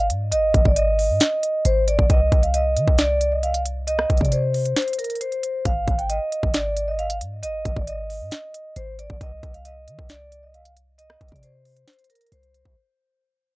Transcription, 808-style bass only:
0, 0, Header, 1, 2, 480
1, 0, Start_track
1, 0, Key_signature, -3, "minor"
1, 0, Tempo, 444444
1, 346, Time_signature, 4, 2, 24, 8
1, 14637, End_track
2, 0, Start_track
2, 0, Title_t, "808-style bass"
2, 0, Program_c, 0, 38
2, 0, Note_on_c, 0, 32, 105
2, 106, Note_on_c, 0, 44, 100
2, 122, Note_off_c, 0, 32, 0
2, 346, Note_on_c, 0, 32, 99
2, 362, Note_off_c, 0, 44, 0
2, 574, Note_off_c, 0, 32, 0
2, 586, Note_on_c, 0, 32, 106
2, 701, Note_off_c, 0, 32, 0
2, 706, Note_on_c, 0, 32, 105
2, 1186, Note_on_c, 0, 44, 97
2, 1202, Note_off_c, 0, 32, 0
2, 1300, Note_off_c, 0, 44, 0
2, 1785, Note_on_c, 0, 32, 110
2, 2131, Note_off_c, 0, 32, 0
2, 2146, Note_on_c, 0, 32, 101
2, 2259, Note_off_c, 0, 32, 0
2, 2266, Note_on_c, 0, 36, 106
2, 2496, Note_off_c, 0, 36, 0
2, 2505, Note_on_c, 0, 36, 104
2, 2986, Note_on_c, 0, 51, 100
2, 3002, Note_off_c, 0, 36, 0
2, 3100, Note_off_c, 0, 51, 0
2, 3106, Note_on_c, 0, 36, 103
2, 4383, Note_off_c, 0, 36, 0
2, 4426, Note_on_c, 0, 36, 99
2, 4541, Note_off_c, 0, 36, 0
2, 4546, Note_on_c, 0, 48, 98
2, 5122, Note_off_c, 0, 48, 0
2, 6106, Note_on_c, 0, 32, 113
2, 6336, Note_off_c, 0, 32, 0
2, 6346, Note_on_c, 0, 32, 103
2, 6692, Note_off_c, 0, 32, 0
2, 6946, Note_on_c, 0, 32, 107
2, 7786, Note_on_c, 0, 44, 99
2, 7802, Note_off_c, 0, 32, 0
2, 8026, Note_on_c, 0, 32, 95
2, 8042, Note_off_c, 0, 44, 0
2, 8254, Note_off_c, 0, 32, 0
2, 8266, Note_on_c, 0, 32, 105
2, 8381, Note_off_c, 0, 32, 0
2, 8385, Note_on_c, 0, 32, 108
2, 8866, Note_on_c, 0, 44, 99
2, 8882, Note_off_c, 0, 32, 0
2, 8980, Note_off_c, 0, 44, 0
2, 9465, Note_on_c, 0, 32, 111
2, 9811, Note_off_c, 0, 32, 0
2, 9827, Note_on_c, 0, 32, 101
2, 9939, Note_off_c, 0, 32, 0
2, 9946, Note_on_c, 0, 36, 114
2, 10176, Note_off_c, 0, 36, 0
2, 10186, Note_on_c, 0, 36, 106
2, 10665, Note_on_c, 0, 51, 98
2, 10681, Note_off_c, 0, 36, 0
2, 10779, Note_off_c, 0, 51, 0
2, 10786, Note_on_c, 0, 36, 104
2, 12063, Note_off_c, 0, 36, 0
2, 12106, Note_on_c, 0, 36, 102
2, 12219, Note_off_c, 0, 36, 0
2, 12225, Note_on_c, 0, 48, 101
2, 12801, Note_off_c, 0, 48, 0
2, 13306, Note_on_c, 0, 36, 115
2, 13651, Note_off_c, 0, 36, 0
2, 13666, Note_on_c, 0, 36, 99
2, 13781, Note_off_c, 0, 36, 0
2, 14637, End_track
0, 0, End_of_file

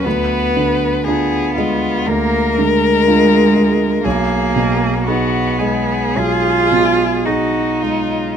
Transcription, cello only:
0, 0, Header, 1, 2, 480
1, 0, Start_track
1, 0, Tempo, 1003344
1, 26, Time_signature, 4, 2, 24, 8
1, 2425, Tempo, 1092896
1, 3385, Tempo, 1181102
1, 3838, End_track
2, 0, Start_track
2, 0, Title_t, "Cello"
2, 0, Program_c, 0, 42
2, 22, Note_on_c, 0, 59, 63
2, 509, Note_off_c, 0, 59, 0
2, 515, Note_on_c, 0, 59, 57
2, 996, Note_on_c, 0, 58, 67
2, 1003, Note_off_c, 0, 59, 0
2, 1236, Note_on_c, 0, 56, 69
2, 1243, Note_off_c, 0, 58, 0
2, 1933, Note_off_c, 0, 56, 0
2, 1936, Note_on_c, 0, 58, 76
2, 2424, Note_on_c, 0, 59, 57
2, 2430, Note_off_c, 0, 58, 0
2, 2910, Note_on_c, 0, 65, 79
2, 2917, Note_off_c, 0, 59, 0
2, 3385, Note_on_c, 0, 63, 53
2, 3392, Note_off_c, 0, 65, 0
2, 3838, Note_off_c, 0, 63, 0
2, 3838, End_track
0, 0, End_of_file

